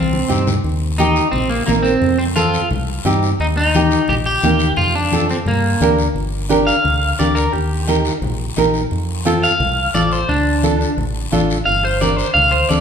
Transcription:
Already playing: fingered electric bass C2, clean electric guitar C4
0.13 low conga
0.28 fingered electric bass G2, nylon-string guitar C4 D#4 G4, low conga, short guiro
0.47 low conga, short guiro
0.64 fingered electric bass D#2, high conga, long guiro
0.98 nylon-string guitar A#3 D#4 G4, clean electric guitar D#4, high conga, short guiro
1.16 short guiro
1.32 fingered electric bass A#1, clean electric guitar C4, high conga, low conga, long guiro
1.50 clean electric guitar A#3
1.66 fingered electric bass A#1, clean electric guitar A#3, nylon-string guitar A#3 D#4 A#4, high conga, short guiro
1.83 clean electric guitar C4, short guiro
2.01 fingered electric bass F2, high conga, low conga, long guiro
2.18 clean electric guitar C4
2.36 nylon-string guitar C4 F4 A4, clean electric guitar F4, high conga, short guiro
2.54 short guiro
2.71 fingered electric bass C2, high conga, low conga, long guiro
3.05 fingered electric bass G2, nylon-string guitar C4 D#4 G4, high conga, short guiro
3.23 short guiro
3.40 fingered electric bass D#2, clean electric guitar D#4, high conga, long guiro
3.57 clean electric guitar D#4
3.74 nylon-string guitar A#3 D#4 G4, high conga, short guiro
3.91 short guiro
4.08 fingered electric bass A#1, clean electric guitar G4, high conga, low conga, long guiro
4.26 clean electric guitar G4
4.43 fingered electric bass D#2, nylon-string guitar A#3 D#4 G4, high conga, short guiro
4.59 short guiro
4.77 fingered electric bass F2, clean electric guitar F4, high conga, low conga, long guiro
4.95 clean electric guitar D4
5.12 nylon-string guitar C4 F4 A4, high conga, short guiro
5.29 clean electric guitar C4, short guiro
5.46 fingered electric bass G2, clean electric guitar A#3, high conga, low conga, long guiro
5.80 fingered electric bass D2, nylon-string guitar D4 G4 A#4, high conga, short guiro
5.99 short guiro
6.15 fingered electric bass G1, high conga, long guiro
6.49 nylon-string guitar D4 G4 A#4, high conga, short guiro
6.67 clean electric guitar F5, short guiro
6.84 fingered electric bass D2, high conga, low conga, long guiro
7.19 fingered electric bass D2, nylon-string guitar D4 G4 A#4, clean electric guitar D5, high conga, short guiro
7.35 clean electric guitar A#4, short guiro
7.53 fingered electric bass D#2, clean electric guitar G4, high conga, long guiro
7.88 nylon-string guitar D#4 G4 A#4, high conga, short guiro
8.05 short guiro
8.21 fingered electric bass A#1, high conga, low conga, long guiro
8.57 fingered electric bass A#1, nylon-string guitar D#4 G4 A#4, high conga, short guiro
8.74 short guiro
8.91 fingered electric bass F2, high conga, long guiro
9.25 nylon-string guitar C4 F4 A4, high conga, short guiro
9.43 clean electric guitar F5, short guiro
9.60 fingered electric bass C2, high conga, low conga, long guiro
9.94 fingered electric bass A1, nylon-string guitar C4 F4 A4, clean electric guitar D5, high conga, short guiro
10.12 clean electric guitar C5, short guiro
10.29 fingered electric bass D2, clean electric guitar D4, high conga, low conga, long guiro
10.63 nylon-string guitar D4 F4 A4, high conga, short guiro
10.81 short guiro
10.97 fingered electric bass A1, high conga, low conga, long guiro
11.32 fingered electric bass A1, nylon-string guitar D4 F4 A4, high conga, short guiro
11.50 short guiro
11.65 fingered electric bass G1, clean electric guitar F5, high conga, long guiro
11.85 clean electric guitar C5
12.01 nylon-string guitar D4 G4 A#4, clean electric guitar D5, high conga, short guiro
12.17 clean electric guitar C5, short guiro
12.34 fingered electric bass D2, clean electric guitar F5, high conga, low conga, long guiro
12.52 clean electric guitar C5
12.69 fingered electric bass D2, nylon-string guitar D4 G4 A4, clean electric guitar D5, high conga, short guiro

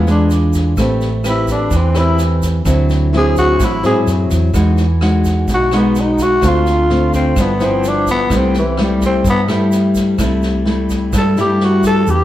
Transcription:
Already playing: fingered electric bass E2, nylon-string guitar E3
0.07 nylon-string guitar G#3 D4 F4, tenor saxophone D4, snare, shaker
0.30 snare, shaker
0.53 kick, snare, shaker
0.77 fingered electric bass A1, nylon-string guitar A3 C4 G4 B4, kick, cross-stick, snare, shaker
1.01 snare, shaker
1.24 nylon-string guitar C4 G4 B4, cross-stick, snare, shaker
1.29 tenor saxophone E4
1.48 tenor saxophone D4, kick, snare, shaker
1.71 fingered electric bass E2, nylon-string guitar E3, kick, snare, shaker
1.76 tenor saxophone C4
1.94 nylon-string guitar C4 G4 B4, tenor saxophone E4, cross-stick, snare, shaker
2.18 snare, shaker
2.42 kick, snare, shaker
2.65 fingered electric bass D2, nylon-string guitar D3 F#3 C4 E4, kick, cross-stick, snare, shaker
2.89 snare, shaker
3.13 nylon-string guitar F#3 C4 E4, snare
3.17 tenor saxophone G#4
3.36 tenor saxophone F#4, kick, snare, shaker
3.59 fingered electric bass A1, nylon-string guitar A2, kick, cross-stick, snare, shaker
3.64 tenor saxophone E4
3.83 fingered electric bass G#2, nylon-string guitar F#3 C4 E4, tenor saxophone G#4, snare, shaker
4.06 fingered electric bass F#2, snare, shaker
4.30 fingered electric bass E2, kick, snare, shaker
4.54 fingered electric bass E2, nylon-string guitar E3 G#3 D#4 F#4, kick, cross-stick, snare, shaker
4.77 snare, shaker
5.01 nylon-string guitar G#3 D#4 F#4, cross-stick, snare
5.24 kick, snare, shaker
5.48 fingered electric bass B1, nylon-string guitar B2, kick, snare, shaker
5.54 tenor saxophone F#4
5.71 nylon-string guitar G#3 D#4 F#4, cross-stick, snare, shaker
5.76 tenor saxophone B3
5.95 snare, shaker
6.00 tenor saxophone D#4
6.18 kick, snare, shaker
6.23 tenor saxophone F#4
6.42 fingered electric bass D2, nylon-string guitar D3 A3 C4 F4, kick, cross-stick, snare, shaker
6.47 tenor saxophone F4
6.66 snare, shaker
6.90 nylon-string guitar A3 C4 F4, snare
7.13 tenor saxophone C4, kick, snare, shaker
7.36 fingered electric bass G1, nylon-string guitar G2 F3 B3 E4, kick, cross-stick, snare, shaker
7.41 tenor saxophone B3
7.60 nylon-string guitar F3 B3 E4, snare, shaker
7.64 tenor saxophone C4
7.84 snare, shaker
7.89 tenor saxophone D4
8.07 kick, snare, shaker
8.11 tenor saxophone B3
8.30 fingered electric bass C2, nylon-string guitar C3 G3 A3 E4, kick, cross-stick, snare, shaker
8.36 tenor saxophone C4
8.54 snare, shaker
8.59 tenor saxophone E3
8.77 nylon-string guitar G3 A3 E4, cross-stick, snare
8.84 tenor saxophone G3
9.01 kick, snare, shaker
9.06 tenor saxophone C4
9.24 fingered electric bass G2, nylon-string guitar G2, kick, snare, shaker
9.30 tenor saxophone B3
9.48 nylon-string guitar G3 A3 E4, cross-stick, snare, shaker
9.72 snare, shaker
9.95 kick, snare, shaker
10.18 fingered electric bass C2, nylon-string guitar C3 G3 A3 E4, kick, cross-stick, snare, shaker
10.42 snare, shaker
10.65 nylon-string guitar G3 A3 E4, snare
10.89 kick, snare, shaker
11.13 fingered electric bass G2, nylon-string guitar G2, kick, cross-stick, snare, shaker
11.17 tenor saxophone A4
11.37 nylon-string guitar G3 A3 E4, tenor saxophone G4, snare, shaker
11.60 snare
11.65 tenor saxophone F#4
11.83 tenor saxophone A4, kick, snare, shaker
12.07 fingered electric bass E2, nylon-string guitar E3 B3 D4 G4, tenor saxophone G4, shaker

